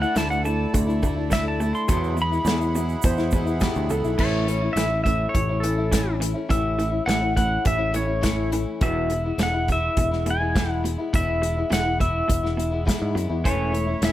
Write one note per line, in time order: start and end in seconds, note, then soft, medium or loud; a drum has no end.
0.00 0.13 D3 medium
0.00 0.13 A3 medium
0.00 0.14 A3 soft
0.00 0.14 D4 medium
0.00 4.16 E4 medium
0.00 0.15 E4 medium
0.00 1.86 A4 medium
0.00 1.87 D5 medium
0.00 0.16 F#5 loud
0.00 1.86 A5 medium
0.00 shaker soft
0.14 0.65 D2 loud
0.14 0.30 D3 medium
0.14 0.30 A3 medium
0.14 0.29 D4 medium
0.14 0.28 E4 loud
0.14 0.30 A5 medium
0.14 snare loud
0.14 closed hi-hat medium
0.14 shaker medium
0.29 0.43 A3 soft
0.29 0.43 D4 medium
0.29 0.44 E4 medium
0.29 0.44 F#5 medium
0.29 shaker soft
0.43 0.87 D3 medium
0.43 0.88 A3 medium
0.43 0.88 D4 medium
0.43 0.86 E4 medium
0.43 0.73 A5 loud
0.43 shaker medium
0.74 1.72 D2 loud
0.74 1.00 D3 medium
0.74 1.00 A3 medium
0.74 kick loud
0.74 closed hi-hat medium
0.74 shaker medium
0.87 1.02 A3 medium
0.87 1.03 D4 medium
0.87 1.02 E4 medium
0.87 shaker soft
1.02 1.17 D3 medium
1.02 1.17 A3 medium
1.02 1.16 D4 medium
1.02 1.14 E4 medium
1.02 kick medium
1.02 shaker medium
1.16 1.31 A3 soft
1.16 1.31 D4 medium
1.16 1.31 E4 medium
1.30 1.59 D3 medium
1.30 1.60 A3 medium
1.30 1.60 D4 medium
1.30 1.61 E4 medium
1.30 1.46 E5 loud
1.30 kick medium
1.30 snare loud
1.30 closed hi-hat medium
1.30 shaker medium
1.48 1.74 A5 loud
1.60 1.89 D3 medium
1.60 1.89 A3 medium
1.60 1.89 D4 medium
1.60 1.89 E4 medium
1.60 shaker medium
1.75 2.16 C6 loud
1.75 shaker soft
1.88 2.17 E2 medium
1.88 2.38 E2 loud
1.88 2.17 B2 medium
1.88 2.17 F#3 medium
1.88 2.18 G#3 medium
1.88 2.18 B3 medium
1.88 2.18 E4 medium
1.88 4.18 G#4 medium
1.88 4.18 F#5 medium
1.88 4.18 B5 medium
1.88 kick loud
1.88 closed hi-hat medium
1.88 shaker medium
2.04 shaker soft
2.17 2.43 E2 medium
2.17 2.43 B2 medium
2.17 2.32 F#3 medium
2.17 2.32 G#3 medium
2.17 2.31 B3 medium
2.17 2.30 E4 medium
2.17 shaker medium
2.22 3.31 B5 loud
2.31 2.46 F#3 soft
2.31 2.47 G#3 soft
2.31 2.47 B3 soft
2.31 2.46 E4 soft
2.31 shaker soft
2.45 2.94 E2 loud
2.45 2.61 E2 medium
2.45 2.61 B2 medium
2.45 2.61 F#3 medium
2.45 2.60 G#3 loud
2.45 2.60 B3 medium
2.45 snare loud
2.45 closed hi-hat medium
2.45 shaker medium
2.49 2.59 E4 medium
2.60 2.73 F#3 soft
2.60 2.74 G#3 soft
2.60 2.75 B3 soft
2.60 2.75 E4 medium
2.60 shaker soft
2.74 3.01 E2 medium
2.74 3.01 B2 medium
2.74 3.18 F#3 medium
2.74 3.18 G#3 medium
2.74 3.18 B3 medium
2.74 3.17 E4 medium
2.74 shaker medium
2.89 shaker soft
3.02 3.30 E2 medium
3.02 3.65 E2 medium
3.02 3.30 B2 medium
3.02 3.60 C5 loud
3.02 kick loud
3.02 closed hi-hat medium
3.02 shaker loud
3.17 3.32 F#3 medium
3.17 3.33 G#3 medium
3.17 3.33 B3 medium
3.17 3.32 E4 medium
3.17 snare soft
3.17 shaker soft
3.31 3.59 E2 medium
3.31 3.59 B2 medium
3.31 3.47 F#3 medium
3.31 3.46 G#3 medium
3.31 3.46 B3 medium
3.31 3.44 E4 medium
3.31 kick medium
3.31 shaker medium
3.46 3.60 F#3 medium
3.46 3.60 G#3 medium
3.46 3.61 B3 medium
3.46 3.61 E4 medium
3.46 shaker soft
3.60 3.90 E2 loud
3.60 3.90 B2 medium
3.60 3.88 F#3 loud
3.60 3.89 G#3 loud
3.60 3.90 B3 loud
3.60 3.90 E4 loud
3.60 3.89 G4 medium
3.60 kick medium
3.60 snare loud
3.60 closed hi-hat medium
3.60 shaker loud
3.75 3.89 D2 medium
3.75 shaker soft
3.89 4.03 C#2 medium
3.89 4.16 E2 medium
3.89 4.17 B2 medium
3.89 4.04 F#3 medium
3.89 4.04 G#3 medium
3.89 4.04 B3 medium
3.89 4.03 E4 medium
3.89 4.18 A4 medium
3.89 shaker medium
4.04 4.18 B1 medium
4.04 4.18 F#3 medium
4.04 4.18 G#3 medium
4.04 4.18 B3 medium
4.04 4.18 E4 medium
4.04 shaker soft
4.17 4.68 A1 loud
4.17 4.47 A2 medium
4.17 4.45 E3 medium
4.17 4.47 A3 medium
4.17 4.47 C#4 medium
4.17 4.48 E4 medium
4.17 4.79 C#5 medium
4.17 kick loud
4.17 crash medium
4.46 4.62 E3 medium
4.46 4.62 A3 medium
4.46 4.62 C#4 medium
4.46 4.61 E4 medium
4.46 closed hi-hat medium
4.62 4.76 A3 soft
4.62 4.77 C#4 soft
4.62 4.77 E4 soft
4.73 5.26 A1 medium
4.73 4.91 A2 medium
4.73 5.02 E5 medium
4.73 closed hi-hat medium
4.77 4.91 E3 medium
4.77 4.91 A3 medium
4.77 4.91 C#4 medium
4.77 4.89 E4 medium
4.77 snare medium
4.91 5.04 A3 soft
4.91 5.05 C#4 soft
4.91 5.05 E4 medium
5.04 5.32 A2 medium
5.04 5.48 E3 medium
5.04 5.49 A3 medium
5.04 5.49 C#4 medium
5.04 5.48 E4 medium
5.04 5.34 E5 medium
5.04 kick medium
5.04 closed hi-hat medium
5.29 5.62 C#5 loud
5.34 6.33 A1 medium
5.34 5.60 A2 medium
5.34 5.61 E3 medium
5.34 kick loud
5.34 closed hi-hat medium
5.49 5.62 A3 soft
5.49 5.63 C#4 medium
5.49 5.63 E4 medium
5.60 5.90 A2 medium
5.60 5.77 E3 medium
5.60 5.78 A3 medium
5.60 6.16 A4 medium
5.60 closed hi-hat medium
5.64 5.78 C#4 medium
5.64 5.76 E4 medium
5.78 5.92 A3 soft
5.78 5.91 C#4 soft
5.78 5.92 E4 medium
5.92 6.21 A2 medium
5.92 6.19 E3 medium
5.92 6.20 A3 medium
5.92 6.21 C#4 medium
5.92 6.22 E4 medium
5.92 kick medium
5.92 snare medium
5.92 closed hi-hat medium
6.20 6.47 A2 medium
6.20 6.35 E3 medium
6.20 6.36 A3 medium
6.20 6.34 C#4 medium
6.20 6.33 E4 medium
6.20 closed hi-hat medium
6.34 6.48 A3 soft
6.34 6.48 C#4 soft
6.34 6.49 E4 medium
6.49 6.99 A1 loud
6.49 6.78 A2 medium
6.49 6.76 E3 medium
6.49 6.77 A3 medium
6.49 6.78 C#4 medium
6.49 6.79 E4 medium
6.49 7.06 E5 medium
6.49 kick loud
6.49 closed hi-hat medium
6.77 7.05 A2 medium
6.77 6.93 E3 medium
6.77 6.93 A3 medium
6.77 6.91 C#4 medium
6.77 6.90 E4 medium
6.77 closed hi-hat medium
6.91 7.06 A3 soft
6.91 7.06 C#4 soft
6.91 7.06 E4 soft
7.06 7.57 A1 medium
7.06 7.21 A2 medium
7.06 7.21 E3 medium
7.06 7.20 A3 medium
7.06 7.19 C#4 medium
7.06 7.18 E4 medium
7.06 7.35 F#5 loud
7.06 snare medium
7.06 closed hi-hat medium
7.20 7.33 A3 soft
7.20 7.34 C#4 soft
7.20 7.35 E4 medium
7.33 7.63 A2 medium
7.33 7.79 E3 medium
7.33 7.79 A3 medium
7.33 7.77 C#4 medium
7.33 7.76 E4 medium
7.33 7.67 F#5 medium
7.33 kick medium
7.33 closed hi-hat medium
7.38 7.63 E3 medium
7.65 8.64 A1 loud
7.65 7.92 A2 medium
7.65 7.92 E3 medium
7.65 7.96 E5 loud
7.65 kick loud
7.65 closed hi-hat medium
7.77 7.91 A3 soft
7.77 7.92 C#4 medium
7.77 7.93 E4 medium
7.92 8.21 A2 medium
7.92 8.08 E3 medium
7.92 8.08 A3 medium
7.92 8.07 C#4 medium
7.92 8.05 E4 medium
7.92 closed hi-hat medium
7.96 8.49 C#5 medium
8.06 8.20 A3 soft
8.06 8.22 C#4 soft
8.06 8.21 E4 soft
8.21 8.51 A2 medium
8.21 8.49 E3 medium
8.21 8.50 A3 medium
8.21 8.51 C#4 medium
8.21 8.52 E4 medium
8.21 kick medium
8.21 snare medium
8.21 closed hi-hat medium
8.50 8.79 A2 medium
8.50 8.80 E3 medium
8.50 8.81 A3 medium
8.50 8.81 C#4 medium
8.50 8.81 E4 medium
8.50 closed hi-hat medium
8.81 9.31 E1 loud
8.81 9.10 E2 medium
8.81 9.10 B2 medium
8.81 9.08 E3 medium
8.81 9.08 G#3 medium
8.81 9.09 B3 medium
8.81 9.09 E4 medium
8.81 9.42 E5 medium
8.81 kick loud
8.81 closed hi-hat medium
9.09 9.37 E2 medium
9.09 9.37 B2 medium
9.09 9.24 E3 medium
9.09 9.24 G#3 medium
9.09 9.24 B3 medium
9.09 9.23 E4 medium
9.09 closed hi-hat medium
9.24 9.38 E3 soft
9.24 9.38 G#3 soft
9.24 9.39 B3 medium
9.24 9.39 E4 soft
9.38 9.88 E1 medium
9.38 9.53 E2 medium
9.38 9.54 B2 medium
9.38 9.54 E3 medium
9.38 9.54 G#3 medium
9.38 9.53 B3 medium
9.38 9.52 E4 medium
9.38 snare medium
9.38 closed hi-hat medium
9.43 9.71 F#5 medium
9.53 9.67 E3 soft
9.53 9.68 G#3 soft
9.53 9.69 B3 soft
9.53 9.68 E4 medium
9.68 9.95 E2 medium
9.68 9.95 B2 medium
9.68 10.12 E3 medium
9.68 10.12 G#3 medium
9.68 10.11 B3 medium
9.68 10.10 E4 medium
9.68 10.30 E5 medium
9.68 kick medium
9.68 closed hi-hat medium
9.97 10.96 E1 medium
9.97 10.23 E2 medium
9.97 10.24 B2 medium
9.97 kick medium
9.97 closed hi-hat medium
10.11 10.24 E3 soft
10.11 10.25 G#3 medium
10.11 10.26 B3 soft
10.11 10.26 E4 medium
10.11 snare soft
10.25 10.52 E2 medium
10.25 10.52 B2 medium
10.25 10.40 E3 medium
10.25 10.41 G#3 medium
10.25 10.39 B3 medium
10.25 10.39 E4 medium
10.25 closed hi-hat medium
10.30 10.70 G#5 medium
10.40 10.54 E3 soft
10.40 10.54 G#3 medium
10.40 10.55 B3 medium
10.40 10.55 E4 medium
10.54 10.84 E2 medium
10.54 10.84 B2 medium
10.54 10.82 E3 medium
10.54 10.83 G#3 medium
10.54 10.83 B3 medium
10.54 10.84 E4 medium
10.54 kick medium
10.54 snare medium
10.54 closed hi-hat medium
10.70 10.82 F#5 medium
10.83 11.10 E2 medium
10.83 11.10 B2 medium
10.83 10.98 E3 medium
10.83 10.99 G#3 medium
10.83 10.98 B3 medium
10.83 10.97 E4 medium
10.83 closed hi-hat medium
10.98 11.12 E3 soft
10.98 11.12 G#3 soft
10.98 11.13 B3 medium
10.98 11.13 E4 medium
11.13 11.63 E1 medium
11.13 11.42 E2 medium
11.13 11.42 B2 medium
11.13 11.41 E3 medium
11.13 11.42 G#3 medium
11.13 11.43 B3 medium
11.13 11.43 E4 medium
11.13 11.73 E5 medium
11.13 kick loud
11.13 closed hi-hat medium
11.42 11.68 E2 medium
11.42 11.68 B2 medium
11.42 11.57 E3 medium
11.42 11.57 G#3 medium
11.42 11.56 B3 medium
11.42 11.55 E4 medium
11.42 closed hi-hat medium
11.56 11.69 E3 soft
11.56 11.69 G#3 soft
11.56 11.70 B3 soft
11.56 11.70 E4 medium
11.69 12.20 E1 medium
11.69 11.85 E2 medium
11.69 11.85 B2 medium
11.69 11.85 E3 medium
11.69 11.85 G#3 medium
11.69 11.84 B3 medium
11.69 11.83 E4 medium
11.69 12.00 F#5 medium
11.69 snare medium
11.69 closed hi-hat medium
11.84 11.98 E3 soft
11.84 11.99 G#3 soft
11.84 12.00 B3 medium
11.84 11.99 E4 soft
11.99 12.26 E2 medium
11.99 12.26 B2 medium
11.99 12.43 E3 medium
11.99 12.43 G#3 medium
11.99 12.42 B3 medium
11.99 12.42 E4 medium
11.99 12.83 E5 medium
11.99 kick medium
11.99 closed hi-hat medium
12.28 12.91 E1 medium
12.28 12.54 E2 medium
12.28 12.55 B2 medium
12.28 kick medium
12.28 closed hi-hat medium
12.43 12.55 E3 soft
12.43 12.57 G#3 soft
12.43 12.57 B3 soft
12.43 12.58 E4 medium
12.43 snare soft
12.56 12.83 E2 medium
12.56 12.83 B2 medium
12.56 12.71 E3 medium
12.56 12.72 G#3 medium
12.56 12.71 B3 medium
12.56 12.70 E4 medium
12.56 closed hi-hat medium
12.71 12.85 E3 soft
12.71 12.85 G#3 medium
12.71 12.85 B3 medium
12.71 12.86 E4 medium
12.85 13.15 E2 medium
12.85 13.15 B2 medium
12.85 13.14 E3 medium
12.85 13.15 G#3 medium
12.85 13.15 B3 medium
12.85 13.16 E4 loud
12.85 kick medium
12.85 snare loud
12.85 closed hi-hat medium
13.02 13.14 G#2 medium
13.15 13.41 E2 medium
13.15 13.28 F#2 medium
13.15 13.41 B2 medium
13.15 13.30 E3 medium
13.15 13.30 G#3 medium
13.15 13.29 B3 medium
13.15 13.28 E4 medium
13.15 closed hi-hat medium
13.29 13.43 E2 medium
13.29 13.43 E3 soft
13.29 13.44 G#3 soft
13.29 13.44 B3 medium
13.29 13.44 E4 medium
13.43 13.94 E1 loud
13.43 13.71 E3 medium
13.43 14.12 A3 medium
13.43 13.72 A3 medium
13.43 13.73 C#4 medium
13.43 14.12 E4 medium
13.43 13.74 E4 medium
13.43 14.12 C#5 medium
13.43 14.04 C#5 medium
13.43 14.12 E5 medium
13.43 kick loud
13.43 closed hi-hat medium
13.72 13.87 E3 medium
13.72 13.88 A3 medium
13.72 13.87 C#4 medium
13.72 13.85 E4 medium
13.72 closed hi-hat medium
13.86 14.01 A3 soft
13.86 14.01 C#4 soft
13.86 14.01 E4 soft
14.01 14.12 E1 medium
14.01 14.12 E3 medium
14.01 14.12 A3 medium
14.01 14.12 C#4 medium
14.01 14.12 E4 medium
14.01 14.12 E5 medium
14.01 snare medium
14.01 closed hi-hat medium